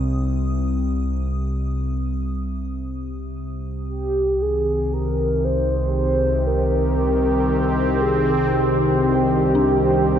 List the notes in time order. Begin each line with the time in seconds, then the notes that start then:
Already playing: C2 C3 D#4 D#6
3.89 G4
4.37 C3 D#3
4.42 C2 G#4
4.77 G4
4.93 A#4
5.37 C4
5.45 C5
5.95 C5
6.47 A#4
8.01 G#4
8.50 G4
9.14 C5
9.55 D4